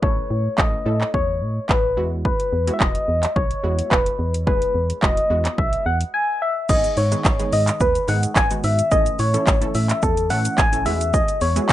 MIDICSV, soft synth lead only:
0, 0, Header, 1, 2, 480
1, 0, Start_track
1, 0, Key_signature, 4, "major"
1, 0, Tempo, 555556
1, 23, Time_signature, 4, 2, 24, 8
1, 10134, End_track
2, 0, Start_track
2, 0, Title_t, "Soft synth lead"
2, 0, Program_c, 0, 80
2, 24, Note_on_c, 0, 73, 94
2, 470, Note_off_c, 0, 73, 0
2, 505, Note_on_c, 0, 75, 103
2, 950, Note_off_c, 0, 75, 0
2, 985, Note_on_c, 0, 73, 96
2, 1430, Note_off_c, 0, 73, 0
2, 1467, Note_on_c, 0, 71, 93
2, 1807, Note_off_c, 0, 71, 0
2, 1944, Note_on_c, 0, 71, 97
2, 2364, Note_on_c, 0, 76, 79
2, 2377, Note_off_c, 0, 71, 0
2, 2424, Note_on_c, 0, 75, 104
2, 2437, Note_off_c, 0, 76, 0
2, 2902, Note_on_c, 0, 73, 105
2, 2915, Note_off_c, 0, 75, 0
2, 3380, Note_on_c, 0, 71, 100
2, 3392, Note_off_c, 0, 73, 0
2, 3749, Note_off_c, 0, 71, 0
2, 3862, Note_on_c, 0, 71, 102
2, 4309, Note_off_c, 0, 71, 0
2, 4341, Note_on_c, 0, 75, 108
2, 4823, Note_on_c, 0, 76, 104
2, 4836, Note_off_c, 0, 75, 0
2, 5059, Note_off_c, 0, 76, 0
2, 5064, Note_on_c, 0, 78, 101
2, 5172, Note_off_c, 0, 78, 0
2, 5304, Note_on_c, 0, 80, 119
2, 5547, Note_on_c, 0, 76, 106
2, 5560, Note_off_c, 0, 80, 0
2, 5784, Note_on_c, 0, 75, 105
2, 5797, Note_off_c, 0, 76, 0
2, 6021, Note_off_c, 0, 75, 0
2, 6026, Note_on_c, 0, 73, 104
2, 6505, Note_on_c, 0, 75, 99
2, 6518, Note_off_c, 0, 73, 0
2, 6749, Note_on_c, 0, 71, 101
2, 6762, Note_off_c, 0, 75, 0
2, 6982, Note_off_c, 0, 71, 0
2, 6987, Note_on_c, 0, 78, 105
2, 7094, Note_off_c, 0, 78, 0
2, 7227, Note_on_c, 0, 80, 113
2, 7334, Note_off_c, 0, 80, 0
2, 7467, Note_on_c, 0, 76, 100
2, 7704, Note_on_c, 0, 75, 109
2, 7717, Note_off_c, 0, 76, 0
2, 7946, Note_on_c, 0, 73, 107
2, 7959, Note_off_c, 0, 75, 0
2, 8419, Note_off_c, 0, 73, 0
2, 8424, Note_on_c, 0, 76, 93
2, 8665, Note_on_c, 0, 69, 102
2, 8678, Note_off_c, 0, 76, 0
2, 8901, Note_on_c, 0, 78, 110
2, 8914, Note_off_c, 0, 69, 0
2, 9141, Note_on_c, 0, 80, 116
2, 9154, Note_off_c, 0, 78, 0
2, 9381, Note_on_c, 0, 76, 103
2, 9394, Note_off_c, 0, 80, 0
2, 9623, Note_on_c, 0, 75, 103
2, 9636, Note_off_c, 0, 76, 0
2, 9863, Note_on_c, 0, 73, 106
2, 9876, Note_off_c, 0, 75, 0
2, 10134, Note_off_c, 0, 73, 0
2, 10134, End_track
0, 0, End_of_file